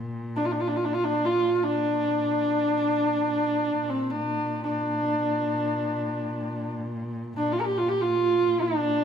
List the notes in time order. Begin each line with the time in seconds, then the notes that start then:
Already playing: A#2
0.36 D4
0.45 F4
0.51 D4
0.61 F4
0.68 D4
0.76 F4
0.84 D4
0.93 F4
1.04 D4
1.25 F4
1.55 F4
1.63 D4
3.80 A#2
3.90 C4
4.10 D4
4.63 D4
7.37 D4
7.52 F4
7.61 A#4
7.65 G4
7.77 F4
7.89 G4
8.01 F4
8.61 D4